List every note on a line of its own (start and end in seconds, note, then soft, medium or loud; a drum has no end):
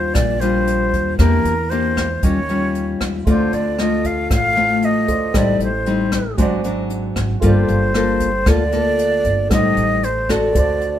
0.00 0.11 D#2 medium
0.00 0.13 D#3 soft
0.00 0.37 G3 soft
0.00 0.38 D4 soft
0.00 0.38 F4 medium
0.00 0.16 C5 medium
0.14 0.89 A#1 medium
0.14 1.17 A#2 soft
0.14 0.42 D5 medium
0.14 kick medium
0.14 cross-stick medium
0.14 closed hi-hat medium
0.40 1.15 G3 medium
0.40 1.15 D4 soft
0.40 1.16 F4 medium
0.40 1.17 C5 medium
0.40 closed hi-hat soft
0.67 closed hi-hat soft
0.93 1.17 D#2 medium
0.93 kick soft
0.93 closed hi-hat soft
1.18 1.43 E2 medium
1.18 2.21 E3 soft
1.18 1.53 A#3 soft
1.18 1.53 D4 medium
1.18 1.53 G4 medium
1.18 1.72 A#4 medium
1.18 kick soft
1.18 cross-stick soft
1.18 closed hi-hat medium
1.45 2.19 E2 medium
1.45 closed hi-hat soft
1.70 2.06 A#3 soft
1.70 2.06 D4 medium
1.70 2.06 G4 medium
1.70 2.25 C5 medium
1.70 closed hi-hat soft
1.97 kick soft
1.97 cross-stick medium
1.97 closed hi-hat soft
2.23 2.97 D#2 medium
2.23 3.24 D#3 soft
2.23 2.38 G3 soft
2.23 2.39 C#4 soft
2.23 2.39 F4 soft
2.23 3.01 C#5 medium
2.23 kick medium
2.23 closed hi-hat medium
2.49 3.23 G3 soft
2.49 3.23 C#4 soft
2.49 3.23 F4 soft
2.49 closed hi-hat soft
2.75 closed hi-hat soft
3.01 3.25 D#2 medium
3.01 kick soft
3.01 cross-stick medium
3.01 closed hi-hat soft
3.25 3.51 D2 medium
3.25 4.28 D3 soft
3.25 3.75 A3 medium
3.25 3.75 C4 soft
3.25 5.04 F4 soft
3.25 3.75 F4 medium
3.25 5.05 A4 soft
3.25 3.55 C5 medium
3.25 kick soft
3.25 closed hi-hat soft
3.29 5.06 C5 soft
3.29 5.07 D5 soft
3.53 4.27 D2 medium
3.53 3.81 D5 medium
3.53 closed hi-hat soft
3.79 4.53 A3 soft
3.79 4.53 C4 soft
3.79 4.53 F4 medium
3.79 4.08 D#5 medium
3.79 cross-stick soft
3.79 closed hi-hat soft
4.04 4.31 F5 medium
4.04 kick soft
4.04 closed hi-hat soft
4.31 5.04 A1 medium
4.31 5.32 A2 soft
4.31 4.86 F5 loud
4.31 kick medium
4.31 cross-stick medium
4.31 closed hi-hat medium
4.56 5.30 A3 soft
4.56 5.31 C4 soft
4.56 5.31 F4 medium
4.56 closed hi-hat soft
4.82 5.38 D#5 medium
4.82 closed hi-hat soft
5.08 5.33 D2 medium
5.08 5.34 F4 soft
5.08 5.32 A4 soft
5.08 5.34 C5 soft
5.08 5.35 D5 soft
5.08 kick soft
5.08 closed hi-hat soft
5.32 5.58 A1 medium
5.32 6.36 A2 soft
5.32 5.68 G3 medium
5.32 5.68 C4 soft
5.32 5.68 D#4 soft
5.32 6.35 G4 soft
5.32 6.36 A4 soft
5.32 6.37 C5 soft
5.32 kick medium
5.32 cross-stick medium
5.32 closed hi-hat medium
5.36 5.61 D5 medium
5.36 6.38 D#5 soft
5.60 6.34 A1 medium
5.60 closed hi-hat soft
5.64 6.36 C5 medium
5.86 6.21 G3 medium
5.86 6.22 C4 medium
5.86 6.22 D#4 medium
5.86 closed hi-hat soft
6.12 kick soft
6.12 cross-stick medium
6.12 closed hi-hat soft
6.38 7.12 G#1 medium
6.38 7.40 G#2 medium
6.38 6.60 F#3 soft
6.38 6.60 C4 soft
6.38 6.60 D4 medium
6.38 7.40 F#4 medium
6.38 7.41 C5 soft
6.38 7.42 D5 medium
6.38 kick medium
6.38 closed hi-hat medium
6.64 7.38 F#3 soft
6.64 7.39 C4 medium
6.64 7.39 D4 medium
6.64 closed hi-hat soft
6.90 closed hi-hat soft
7.16 7.40 G#1 medium
7.16 kick soft
7.16 cross-stick soft
7.16 closed hi-hat soft
7.40 7.66 G1 medium
7.40 8.44 G3 medium
7.40 7.90 A#3 soft
7.40 9.45 F4 soft
7.40 7.90 F4 soft
7.40 9.46 A4 soft
7.40 7.91 A4 medium
7.40 kick medium
7.40 closed hi-hat soft
7.44 8.50 C5 medium
7.44 9.48 D5 soft
7.68 8.43 G1 medium
7.68 closed hi-hat soft
7.94 8.28 A#3 soft
7.94 8.28 F4 soft
7.94 8.29 A4 medium
7.94 cross-stick medium
7.94 closed hi-hat soft
8.20 kick soft
8.20 closed hi-hat soft
8.46 9.20 D2 medium
8.46 9.48 D3 soft
8.46 8.62 A#3 soft
8.46 8.62 F4 medium
8.46 8.62 A4 medium
8.46 9.52 D5 medium
8.46 kick medium
8.46 cross-stick medium
8.46 closed hi-hat medium
8.72 9.47 A#3 medium
8.72 9.47 F4 soft
8.72 9.47 A4 medium
8.72 closed hi-hat soft
8.99 closed hi-hat soft
9.24 9.49 G1 medium
9.24 kick soft
9.24 closed hi-hat soft
9.47 9.75 A1 medium
9.47 10.52 A2 soft
9.47 10.03 G3 soft
9.47 10.51 G4 soft
9.47 10.52 A4 soft
9.47 kick medium
9.47 cross-stick medium
9.47 closed hi-hat medium
9.52 10.03 C4 medium
9.52 10.03 D#4 medium
9.52 10.53 C5 soft
9.52 10.06 D#5 medium
9.52 10.54 D#5 soft
9.77 10.51 A1 medium
9.77 closed hi-hat soft
10.03 10.32 C5 medium
10.03 closed hi-hat soft
10.29 10.99 C4 medium
10.29 10.99 F#4 medium
10.29 10.99 A4 medium
10.29 10.99 D5 medium
10.29 kick soft
10.29 cross-stick medium
10.29 closed hi-hat soft
10.52 10.99 D2 medium
10.52 10.99 D3 soft
10.52 10.99 F#4 soft
10.52 10.99 A4 soft
10.52 10.99 C5 soft
10.52 kick medium
10.52 closed hi-hat medium
10.58 10.99 D5 soft
10.81 closed hi-hat soft